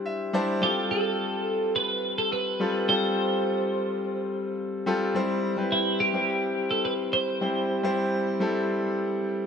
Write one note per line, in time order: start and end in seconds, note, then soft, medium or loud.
0.00 0.33 G3 medium
0.00 0.34 D4 medium
0.00 0.34 E4 medium
0.00 0.35 C5 medium
0.06 0.32 E5 medium
0.33 0.59 G3 medium
0.33 0.59 D4 medium
0.33 0.59 E4 medium
0.33 0.60 C5 loud
0.33 0.60 A5 medium
0.61 1.63 G3 medium
0.61 1.63 C4 medium
0.61 1.63 F4 medium
0.61 0.91 G4 medium
0.61 1.64 A4 medium
0.91 1.75 A4 medium
1.76 2.18 B4 loud
2.18 2.32 A4 medium
2.32 2.85 B4 loud
2.60 2.85 G3 medium
2.60 2.86 C4 medium
2.60 2.86 F4 medium
2.60 2.86 A4 medium
2.88 3.90 G3 medium
2.88 3.90 C4 medium
2.88 3.90 F4 medium
2.88 3.90 A4 medium
2.88 4.55 C5 loud
4.86 5.12 G3 medium
4.86 5.12 C4 medium
4.86 5.12 F4 medium
4.86 5.12 A4 loud
5.15 5.53 G3 medium
5.15 5.53 C4 medium
5.15 5.53 E4 medium
5.15 5.53 C5 medium
5.57 6.08 G3 medium
5.57 6.08 C4 medium
5.57 6.08 E4 medium
5.57 6.08 B4 medium
5.72 6.01 E4 medium
6.00 6.73 G4 medium
6.14 7.15 G3 medium
6.14 7.15 C4 medium
6.14 7.15 E4 medium
6.14 7.16 C5 medium
6.71 6.85 A4 medium
6.85 6.93 B4 medium
7.13 7.94 C5 loud
7.41 7.79 G3 medium
7.41 7.79 C4 medium
7.41 7.80 E4 medium
7.41 7.80 C5 medium
7.83 8.34 G3 medium
7.83 8.34 C4 medium
7.83 8.35 E4 medium
7.83 8.35 C5 medium
8.40 9.41 G3 medium
8.40 9.42 C4 medium
8.40 9.42 E4 medium
8.40 9.42 A4 medium